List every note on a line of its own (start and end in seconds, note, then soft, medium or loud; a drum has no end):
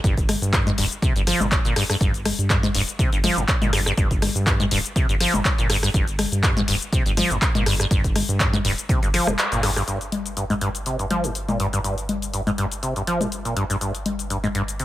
0.04 0.36 G1 loud
0.04 0.15 G2 medium
0.04 kick loud
0.04 closed hi-hat medium
0.04 shaker medium
0.17 kick medium
0.17 closed hi-hat soft
0.17 shaker soft
0.29 cross-stick medium
0.29 open hi-hat loud
0.29 low conga medium
0.42 0.73 G2 loud
0.42 closed hi-hat soft
0.42 shaker medium
0.53 0.61 G2 medium
0.53 kick loud
0.53 cross-stick medium
0.53 clap loud
0.53 closed hi-hat medium
0.53 shaker medium
0.67 0.70 G#2 loud
0.67 closed hi-hat soft
0.67 low conga loud
0.67 shaker soft
0.78 0.87 D1 medium
0.78 0.85 G2 loud
0.78 open hi-hat loud
0.92 shaker medium
1.02 1.13 C3 medium
1.02 kick loud
1.02 closed hi-hat medium
1.02 shaker medium
1.16 1.33 G1 medium
1.16 1.22 G2 medium
1.16 closed hi-hat soft
1.16 shaker soft
1.27 1.42 F3 loud
1.27 cross-stick soft
1.27 open hi-hat loud
1.40 1.57 G1 medium
1.40 1.47 G2 medium
1.40 closed hi-hat soft
1.40 low conga medium
1.40 shaker medium
1.52 kick loud
1.52 clap loud
1.52 closed hi-hat medium
1.52 shaker medium
1.65 1.73 G1 medium
1.65 1.74 A#2 medium
1.65 closed hi-hat soft
1.65 shaker soft
1.76 1.84 G2 loud
1.76 cross-stick medium
1.76 open hi-hat loud
1.90 1.96 G2 loud
1.90 cross-stick medium
1.90 open hi-hat medium
1.90 shaker medium
2.01 2.32 G1 loud
2.01 2.12 G2 medium
2.01 kick loud
2.01 closed hi-hat medium
2.01 shaker medium
2.14 closed hi-hat soft
2.14 shaker soft
2.25 cross-stick medium
2.25 open hi-hat loud
2.25 low conga medium
2.39 2.69 G2 loud
2.39 closed hi-hat soft
2.39 shaker medium
2.50 2.57 G2 medium
2.50 kick loud
2.50 cross-stick medium
2.50 clap loud
2.50 closed hi-hat medium
2.50 shaker medium
2.63 2.67 G#2 loud
2.63 closed hi-hat soft
2.63 low conga medium
2.63 shaker soft
2.74 2.84 D1 loud
2.74 2.82 G2 loud
2.74 open hi-hat loud
2.88 closed hi-hat soft
2.88 shaker medium
2.99 3.10 C3 medium
2.99 kick loud
2.99 closed hi-hat medium
2.99 shaker medium
3.12 3.29 G1 loud
3.12 3.19 G2 medium
3.12 closed hi-hat soft
3.12 shaker soft
3.24 3.39 F3 loud
3.24 cross-stick soft
3.24 open hi-hat loud
3.24 low conga medium
3.37 3.45 G1 medium
3.37 3.43 G2 medium
3.37 shaker medium
3.48 kick loud
3.48 clap loud
3.48 closed hi-hat medium
3.48 shaker medium
3.62 3.92 G1 medium
3.62 3.71 A#2 medium
3.62 closed hi-hat soft
3.62 low conga loud
3.62 shaker soft
3.73 3.80 G2 loud
3.73 cross-stick medium
3.73 open hi-hat loud
3.86 3.92 G2 loud
3.86 cross-stick medium
3.86 closed hi-hat soft
3.86 shaker medium
3.97 4.29 G1 loud
3.97 4.08 G2 medium
3.97 kick loud
3.97 closed hi-hat medium
3.97 shaker medium
4.11 kick medium
4.11 closed hi-hat soft
4.11 shaker soft
4.22 cross-stick medium
4.22 open hi-hat loud
4.22 low conga medium
4.35 4.66 G2 loud
4.35 closed hi-hat soft
4.35 shaker medium
4.47 4.54 G2 medium
4.47 kick loud
4.47 cross-stick medium
4.47 clap loud
4.47 closed hi-hat medium
4.47 shaker medium
4.60 4.64 G#2 loud
4.60 closed hi-hat soft
4.60 low conga medium
4.60 shaker soft
4.71 4.81 D1 loud
4.71 4.79 G2 loud
4.71 open hi-hat loud
4.85 closed hi-hat soft
4.85 shaker medium
4.96 5.07 C3 medium
4.96 kick loud
4.96 closed hi-hat medium
4.96 shaker medium
5.09 5.26 G1 medium
5.09 5.15 G2 medium
5.09 closed hi-hat soft
5.09 shaker soft
5.20 5.35 F3 loud
5.20 cross-stick soft
5.20 open hi-hat loud
5.34 5.42 G1 medium
5.34 5.40 G2 medium
5.34 closed hi-hat soft
5.34 low conga medium
5.34 shaker medium
5.45 kick loud
5.45 clap loud
5.45 closed hi-hat medium
5.45 shaker medium
5.58 5.89 G1 medium
5.58 5.68 A#2 medium
5.58 closed hi-hat soft
5.58 shaker soft
5.70 5.77 G2 loud
5.70 cross-stick medium
5.70 open hi-hat loud
5.83 5.89 G2 loud
5.83 cross-stick medium
5.83 open hi-hat medium
5.83 shaker medium
5.94 6.26 G1 loud
5.94 6.05 G2 medium
5.94 kick loud
5.94 closed hi-hat medium
5.94 shaker medium
6.08 closed hi-hat soft
6.08 shaker soft
6.19 cross-stick medium
6.19 open hi-hat loud
6.19 low conga medium
6.32 6.63 G2 loud
6.32 closed hi-hat soft
6.32 shaker medium
6.43 6.51 G2 medium
6.43 kick loud
6.43 cross-stick medium
6.43 clap loud
6.43 closed hi-hat medium
6.43 shaker medium
6.57 6.60 G#2 loud
6.57 closed hi-hat soft
6.57 low conga medium
6.57 shaker soft
6.68 6.77 D1 medium
6.68 6.75 G2 loud
6.68 open hi-hat loud
6.81 closed hi-hat soft
6.81 shaker medium
6.93 7.04 C3 medium
6.93 kick loud
6.93 closed hi-hat medium
6.93 shaker medium
7.06 7.23 G1 loud
7.06 7.12 G2 medium
7.06 closed hi-hat soft
7.06 shaker soft
7.17 7.32 F3 loud
7.17 cross-stick soft
7.17 open hi-hat loud
7.17 low conga medium
7.30 7.38 G1 medium
7.30 7.37 G2 medium
7.30 closed hi-hat soft
7.30 shaker medium
7.42 kick loud
7.42 clap loud
7.42 closed hi-hat medium
7.42 shaker medium
7.55 7.86 G1 medium
7.55 7.64 A#2 medium
7.55 closed hi-hat soft
7.55 low conga medium
7.55 shaker soft
7.66 7.74 G2 loud
7.66 cross-stick medium
7.66 open hi-hat loud
7.79 7.86 G2 loud
7.79 cross-stick medium
7.79 closed hi-hat soft
7.79 shaker medium
7.91 8.23 G1 loud
7.91 8.02 G2 medium
7.91 kick loud
7.91 closed hi-hat medium
7.91 shaker medium
8.04 kick medium
8.04 closed hi-hat soft
8.04 shaker soft
8.16 cross-stick medium
8.16 open hi-hat loud
8.16 low conga medium
8.29 8.59 G2 loud
8.29 closed hi-hat soft
8.29 shaker medium
8.40 8.47 G2 medium
8.40 kick loud
8.40 cross-stick medium
8.40 clap loud
8.40 closed hi-hat medium
8.40 shaker medium
8.53 8.57 G#2 loud
8.53 closed hi-hat soft
8.53 low conga medium
8.53 shaker soft
8.65 8.74 D1 medium
8.65 8.72 G2 loud
8.65 open hi-hat loud
8.78 closed hi-hat soft
8.78 shaker medium
8.89 9.00 C3 medium
8.89 kick loud
8.89 closed hi-hat medium
8.89 shaker medium
9.02 9.19 G1 medium
9.02 9.09 G2 medium
9.02 closed hi-hat soft
9.02 shaker soft
9.14 9.29 F3 loud
9.14 cross-stick soft
9.14 open hi-hat loud
9.27 9.35 F1 medium
9.27 9.33 G2 medium
9.27 cross-stick medium
9.27 low conga medium
9.27 shaker medium
9.39 clap loud
9.39 closed hi-hat medium
9.39 shaker medium
9.52 9.82 G1 medium
9.52 9.61 A#2 medium
9.52 closed hi-hat soft
9.52 shaker soft
9.63 9.70 G2 loud
9.63 cross-stick medium
9.63 open hi-hat loud
9.76 9.83 G2 loud
9.76 cross-stick medium
9.76 open hi-hat medium
9.76 shaker medium
9.88 14.85 G1 medium
9.88 9.99 G2 medium
9.88 closed hi-hat medium
9.88 shaker medium
10.01 closed hi-hat soft
10.01 shaker soft
10.12 closed hi-hat medium
10.12 low conga medium
10.26 closed hi-hat soft
10.26 shaker medium
10.37 10.44 G2 medium
10.37 closed hi-hat medium
10.37 shaker medium
10.50 10.54 G#2 loud
10.50 closed hi-hat soft
10.50 low conga medium
10.50 shaker soft
10.61 10.69 G2 loud
10.61 closed hi-hat medium
10.75 closed hi-hat soft
10.75 shaker medium
10.86 10.97 C3 medium
10.86 closed hi-hat medium
10.86 shaker soft
10.99 11.06 G2 medium
10.99 closed hi-hat soft
10.99 shaker soft
11.11 11.25 F3 loud
11.11 closed hi-hat medium
11.11 low conga medium
11.24 11.30 G2 medium
11.24 closed hi-hat soft
11.24 shaker medium
11.35 closed hi-hat medium
11.35 shaker medium
11.48 11.58 A#2 medium
11.48 closed hi-hat soft
11.48 low conga medium
11.48 shaker soft
11.60 11.67 G2 medium
11.60 closed hi-hat medium
11.73 11.79 G2 loud
11.73 closed hi-hat soft
11.73 shaker medium
11.84 11.95 G2 medium
11.84 closed hi-hat medium
11.84 shaker medium
11.98 closed hi-hat soft
11.98 shaker soft
12.09 closed hi-hat medium
12.09 low conga medium
12.22 closed hi-hat soft
12.22 shaker medium
12.34 12.41 G2 medium
12.34 closed hi-hat medium
12.34 shaker medium
12.47 12.51 G#2 loud
12.47 closed hi-hat soft
12.47 low conga medium
12.47 shaker soft
12.58 12.65 G2 loud
12.58 closed hi-hat medium
12.72 closed hi-hat soft
12.72 shaker medium
12.83 12.94 C3 medium
12.83 closed hi-hat medium
12.83 shaker medium
12.96 13.02 G2 medium
12.96 closed hi-hat soft
12.96 shaker soft
13.07 13.22 F3 loud
13.07 closed hi-hat medium
13.21 13.27 G2 medium
13.21 closed hi-hat soft
13.21 low conga medium
13.21 shaker medium
13.32 closed hi-hat medium
13.32 shaker soft
13.45 13.54 A#2 medium
13.45 closed hi-hat soft
13.45 shaker soft
13.56 13.64 G2 loud
13.56 closed hi-hat medium
13.70 13.76 G2 loud
13.70 closed hi-hat soft
13.70 shaker medium
13.81 13.92 G2 medium
13.81 closed hi-hat medium
13.81 shaker medium
13.95 closed hi-hat soft
13.95 shaker soft
14.06 closed hi-hat medium
14.06 low conga medium
14.19 closed hi-hat soft
14.19 shaker medium
14.30 14.38 G2 medium
14.30 closed hi-hat medium
14.30 shaker medium
14.44 14.47 G#2 loud
14.44 closed hi-hat soft
14.44 low conga medium
14.44 shaker soft
14.55 14.62 G2 loud
14.55 closed hi-hat medium
14.68 closed hi-hat soft
14.68 shaker medium
14.79 14.85 C3 medium
14.79 closed hi-hat medium
14.79 shaker soft